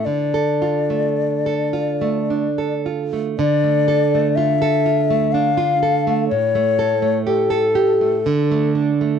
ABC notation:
X:1
M:3/4
L:1/16
Q:1/4=61
K:Dm
V:1 name="Flute"
d8- d2 z2 | d4 e4 f4 | ^c4 A6 z2 |]
V:2 name="Nylon-string guitar"
D, A F A,2 A F A, D A F A, | D, A, A A, F A F A, D F A A, | A,, A, A A, G A G A, D, A, D A, |]